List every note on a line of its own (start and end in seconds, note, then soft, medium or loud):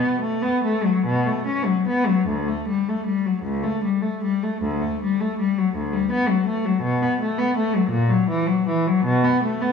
0.00 0.21 B3 medium
0.21 0.42 A3 medium
0.42 0.64 B3 medium
0.64 0.84 A3 medium
0.84 1.05 F#3 medium
1.05 1.25 B2 medium
1.26 1.46 A3 medium
1.46 1.66 C#4 medium
1.65 1.87 F#3 medium
1.88 2.08 B3 medium
2.06 2.27 F#3 medium
2.27 2.46 D2 medium
2.48 2.67 A3 soft
2.68 2.86 G3 soft
2.88 3.06 A3 soft
3.06 3.24 G3 soft
3.26 3.44 F#3 soft
3.42 3.61 C#2 medium
3.63 3.81 A3 medium
3.84 4.01 G3 soft
4.02 4.21 A3 soft
4.24 4.42 G3 soft
4.43 4.62 A3 soft
4.62 4.81 D2 medium
4.82 5.00 A3 soft
5.02 5.19 G3 soft
5.21 5.38 A3 medium
5.39 5.56 G3 soft
5.57 5.75 F#3 soft
5.75 5.92 D2 medium
5.93 6.11 G3 medium
6.11 6.28 B3 medium
6.28 6.46 F#3 medium
6.46 6.64 A3 medium
6.65 6.83 F#3 medium
6.82 7.00 B2 medium
7.03 7.20 B3 medium
7.21 7.37 A3 medium
7.38 7.55 B3 medium
7.57 7.73 A3 medium
7.75 7.92 F#3 medium
7.90 8.08 A#2 medium
8.09 8.28 F#3 medium
8.29 8.47 E3 medium
8.47 8.67 F#3 medium
8.68 8.87 E3 medium
8.87 9.06 F#3 medium
9.05 9.24 B2 medium
9.24 9.43 B3 medium
9.44 9.62 A3 medium
9.62 9.72 B3 medium